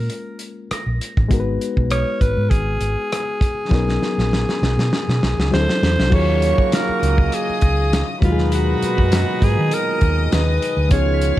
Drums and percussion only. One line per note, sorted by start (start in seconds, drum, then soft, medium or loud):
0.10 closed hi-hat medium
0.39 closed hi-hat medium
0.71 cross-stick loud
0.71 closed hi-hat medium
1.01 closed hi-hat medium
1.17 kick medium
1.17 cross-stick soft
1.31 kick loud
1.31 closed hi-hat medium
1.61 closed hi-hat medium
1.77 kick medium
1.91 cross-stick loud
1.91 closed hi-hat medium
2.21 kick medium
2.21 closed hi-hat medium
2.51 kick medium
2.51 closed hi-hat medium
2.81 closed hi-hat medium
3.12 cross-stick loud
3.12 closed hi-hat medium
3.41 kick medium
3.41 closed hi-hat medium
3.71 kick medium
3.71 snare medium
3.89 snare soft
4.03 snare medium
4.19 snare medium
4.33 snare medium
4.49 snare medium
4.63 snare medium
4.79 snare medium
4.93 snare medium
5.09 snare medium
5.23 snare medium
5.40 snare medium
5.54 snare medium
5.69 snare medium
5.83 snare loud
6.00 snare medium
6.12 kick loud
6.12 crash medium
6.42 closed hi-hat medium
6.58 kick medium
6.72 snare loud
6.72 closed hi-hat medium
7.03 closed hi-hat medium
7.18 kick loud
7.32 closed hi-hat medium
7.61 kick medium
7.61 closed hi-hat medium
7.93 snare loud
7.93 closed hi-hat medium
8.22 kick loud
8.22 closed hi-hat medium
8.38 snare soft
8.52 closed hi-hat medium
8.83 closed hi-hat medium
8.98 kick medium
9.12 snare loud
9.12 closed hi-hat loud
9.42 kick medium
9.42 closed hi-hat medium
9.71 closed hi-hat medium
10.01 kick medium
10.01 closed hi-hat medium
10.32 snare loud
10.32 closed hi-hat medium
10.62 closed hi-hat medium
10.91 kick loud
10.91 closed hi-hat loud
11.21 closed hi-hat medium